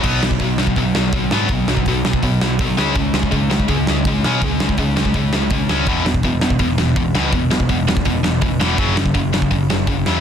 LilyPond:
<<
  \new Staff \with { instrumentName = "Distorted electric guitar" } { \clef bass \time 4/4 \key cis \dorian \tempo 4 = 165 <b, fis b>8 <b, fis>8 <b, fis>8 <b, fis>8 <b, fis>8 <b, fis>8 <b, fis>8 <b, fis b>8 | <b, fis>8 <b, fis>8 <b, fis>8 <b, fis>8 <b, fis>8 <b, fis>8 <b, fis>8 <cis gis cis'>8 | <cis gis>8 <cis gis>8 <cis gis>8 <cis gis>8 <cis gis>8 <cis gis>8 <cis gis>8 <cis gis cis'>8 | <cis gis>8 <cis gis>8 <cis gis>8 <cis gis>8 <cis gis>8 <cis gis>8 <cis gis>8 <cis gis cis'>8 |
<e, b, e>8 <e, b,>8 <e, b,>8 <e, b,>8 <e, b,>8 <e, b,>8 <e, b,>8 <e, b, e>8 | <e, b,>8 <e, b,>8 <e, b,>8 <e, b,>8 <e, b,>8 <e, b,>8 <e, b,>8 <e, b, e>8 | <fis, cis fis>8 <fis, cis>8 <fis, cis>8 <fis, cis>8 <fis, cis>8 <fis, cis>8 <fis, cis>8 <fis, cis fis>8 | }
  \new Staff \with { instrumentName = "Picked electric bass" } { \clef bass \time 4/4 \key cis \dorian b,,4 b,,4 b,,8 b,,8 b,,8 gis,8 | b,,8 b,,8 b,,8 b,,8 b,,4 b,,8 cis,8 | cis,4 cis,4 cis,8 cis,8 cis,8 b,8 | cis,8 cis,8 cis,8 cis,8 cis,4 cis,8 cis,8 |
e,,4 e,,4 e,,8 e,,8 e,,8 cis,8 | e,,8 e,,8 e,,8 e,,8 e,,4 e,,8 e,,8 | fis,,4 fis,,4 fis,,8 fis,,8 fis,,8 e,8 | }
  \new DrumStaff \with { instrumentName = "Drums" } \drummode { \time 4/4 <cymc bd>8 sn16 bd16 <hho bd>8 sn16 bd16 <hho bd>8 sn8 <hho bd>8 sn8 | <hho bd>8 sn16 bd16 <hho bd>8 sn16 bd16 <hho bd>8 sn8 <hho bd>8 sn8 | <hho bd>8 sn16 bd16 <hho bd>8 sn16 bd16 <hho bd>8 sn8 <hho bd>8 sn8 | <hho bd>8 sn16 bd16 <hho bd>8 sn16 bd16 <hho bd>8 sn8 <hho bd>8 sn8 |
<hho bd>8 sn16 bd16 <hho bd>8 sn16 bd16 <hho bd>8 sn8 <hho bd>8 sn8 | <hho bd>8 sn16 bd16 <hho bd>8 sn16 bd16 <hho bd>8 sn8 <hho bd>8 sn8 | <hho bd>8 sn16 bd16 <hho bd>8 sn16 bd16 <hho bd>8 sn8 <hho bd>8 sn8 | }
>>